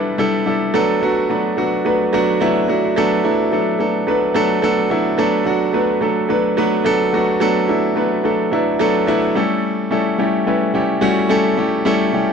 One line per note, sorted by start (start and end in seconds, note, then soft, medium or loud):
0.00 0.18 G3 loud
0.00 0.19 D4 loud
0.00 0.19 E4 loud
0.00 0.76 G4 loud
0.00 0.19 A4 loud
0.00 0.17 B4 medium
0.18 0.44 G3 loud
0.18 0.44 D4 medium
0.18 0.45 E4 medium
0.18 0.45 A4 loud
0.46 0.72 G3 medium
0.46 0.72 D4 medium
0.46 0.72 E4 medium
0.46 0.73 A4 medium
0.74 1.00 F#3 loud
0.74 1.00 A3 loud
0.74 1.00 B3 loud
0.74 1.00 D4 loud
0.74 1.00 A4 loud
1.02 1.28 F#3 medium
1.02 1.28 A3 medium
1.02 1.28 B3 medium
1.02 1.28 D4 medium
1.02 1.28 F#4 loud
1.29 1.55 F#3 medium
1.29 1.55 A3 medium
1.29 1.56 B3 medium
1.29 1.56 D4 medium
1.29 1.56 B4 medium
1.57 1.83 F#3 medium
1.57 1.83 A3 medium
1.57 1.83 B3 medium
1.57 1.83 D4 medium
1.57 1.83 F#4 loud
1.85 2.11 F#3 medium
1.85 2.11 A3 medium
1.85 2.11 B3 medium
1.85 2.11 D4 medium
1.85 2.11 B4 medium
2.13 2.39 F#3 loud
2.13 2.39 A3 loud
2.13 2.39 B3 loud
2.13 2.39 D4 loud
2.13 2.39 F#4 loud
2.40 2.66 F#3 loud
2.40 2.67 A3 loud
2.40 2.67 B3 loud
2.40 2.67 D4 loud
2.40 2.67 E4 loud
2.68 2.94 F#3 medium
2.68 2.94 A3 medium
2.68 2.94 B3 medium
2.68 2.95 D4 medium
2.68 2.95 F#4 loud
2.96 3.22 F#3 loud
2.96 3.22 A3 loud
2.96 3.22 B3 loud
2.96 3.23 D4 loud
2.96 3.23 A4 loud
3.24 3.50 F#3 medium
3.24 3.50 A3 medium
3.24 3.50 B3 medium
3.24 3.50 D4 medium
3.24 3.50 E4 medium
3.52 3.78 F#3 medium
3.52 3.78 A3 medium
3.52 3.78 B3 medium
3.52 3.78 D4 medium
3.52 3.78 A4 medium
3.79 4.05 F#3 medium
3.79 4.05 A3 medium
3.79 4.05 B3 medium
3.79 4.06 D4 medium
3.79 4.06 A4 medium
4.07 4.33 F#3 medium
4.07 4.33 A3 medium
4.07 4.33 B3 medium
4.07 4.33 D4 medium
4.07 4.34 B4 loud
4.34 4.61 F#3 loud
4.34 4.61 A3 loud
4.34 4.61 B3 loud
4.34 4.61 D4 loud
4.34 4.61 A4 loud
4.62 4.88 F#3 loud
4.62 4.89 A3 loud
4.62 4.89 B3 loud
4.62 4.89 D4 loud
4.62 4.89 A4 loud
4.90 5.16 F#3 loud
4.90 5.16 A3 medium
4.90 5.16 B3 medium
4.90 5.17 D4 medium
4.90 5.17 E4 loud
5.18 5.44 F#3 loud
5.18 5.44 A3 loud
5.18 5.44 B3 loud
5.18 5.44 D4 loud
5.18 5.44 A4 loud
5.45 5.71 F#3 medium
5.45 5.72 A3 medium
5.45 5.72 B3 medium
5.45 5.72 D4 medium
5.45 5.72 F#4 loud
5.73 5.99 F#3 medium
5.73 5.99 A3 medium
5.73 6.00 B3 medium
5.73 6.00 D4 medium
5.73 6.00 B4 medium
6.01 6.27 F#3 medium
6.01 6.27 A3 medium
6.01 6.27 B3 medium
6.01 6.28 D4 medium
6.01 6.28 A4 medium
6.29 6.55 F#3 medium
6.29 6.55 A3 medium
6.29 6.55 B3 medium
6.29 6.55 D4 medium
6.29 6.56 B4 loud
6.57 6.83 F#3 loud
6.57 6.83 A3 loud
6.57 6.83 B3 loud
6.57 6.83 D4 loud
6.57 6.84 B4 loud
6.85 7.11 F#3 loud
6.85 7.11 A3 loud
6.85 7.11 B3 loud
6.85 7.11 D4 loud
6.85 7.11 A4 loud
7.13 7.39 F#3 medium
7.13 7.39 A3 medium
7.13 7.39 B3 medium
7.13 7.39 D4 medium
7.13 7.39 F#4 loud
7.40 7.66 F#3 loud
7.40 7.66 A3 loud
7.40 7.67 B3 loud
7.40 7.67 D4 loud
7.40 7.67 A4 loud
7.68 7.94 F#3 medium
7.68 7.94 A3 medium
7.68 7.94 B3 medium
7.68 7.94 D4 medium
7.68 7.95 E4 medium
7.96 8.22 F#3 medium
7.96 8.22 A3 medium
7.96 8.22 B3 medium
7.96 8.22 D4 medium
7.96 8.22 B4 medium
8.24 8.50 F#3 medium
8.24 8.50 A3 medium
8.24 8.50 B3 medium
8.24 8.50 D4 medium
8.24 8.50 A4 medium
8.52 8.78 F#3 medium
8.52 8.78 A3 medium
8.52 8.78 B3 medium
8.52 8.78 D4 medium
8.52 8.78 E4 loud
8.79 9.05 F#3 loud
8.79 9.05 A3 loud
8.79 9.06 B3 loud
8.79 9.06 D4 loud
8.79 9.06 A4 loud
9.07 9.33 F#3 loud
9.07 9.33 A3 medium
9.07 9.33 B3 loud
9.07 9.34 D4 loud
9.07 9.34 E4 loud
9.35 9.87 G3 loud
9.35 9.87 A3 medium
9.35 9.87 C#4 medium
9.35 9.87 E4 medium
9.35 9.87 A4 loud
9.91 10.16 G3 medium
9.91 10.17 A3 medium
9.91 10.17 C#4 medium
9.91 10.17 E4 medium
9.91 10.17 A4 medium
10.18 10.44 G3 medium
10.18 10.44 A3 medium
10.18 10.45 C#4 medium
10.18 10.45 E4 medium
10.18 10.45 G4 medium
10.46 10.72 G3 medium
10.46 10.72 A3 medium
10.46 10.72 C#4 medium
10.46 10.73 E4 medium
10.46 10.73 B4 medium
10.74 11.00 G3 medium
10.74 11.00 A3 medium
10.74 11.00 C#4 medium
10.74 11.00 E4 medium
10.74 11.00 G4 loud
11.01 11.27 G3 loud
11.01 11.27 A3 loud
11.01 11.28 C#4 loud
11.01 11.28 E4 loud
11.01 11.28 F#4 loud
11.29 11.55 G3 loud
11.29 11.55 A3 loud
11.29 11.55 C#4 loud
11.29 11.56 E4 loud
11.29 11.56 A4 loud
11.57 11.83 G3 medium
11.57 11.83 A3 medium
11.57 11.84 C#4 medium
11.57 11.84 E4 medium
11.57 11.84 G4 loud
11.85 12.11 G3 loud
11.85 12.11 A3 loud
11.85 12.11 C#4 loud
11.85 12.11 E4 loud
11.85 12.12 A4 loud
12.13 12.33 G3 medium
12.13 12.33 A3 medium
12.13 12.33 C#4 medium
12.13 12.33 E4 medium
12.13 12.33 G4 medium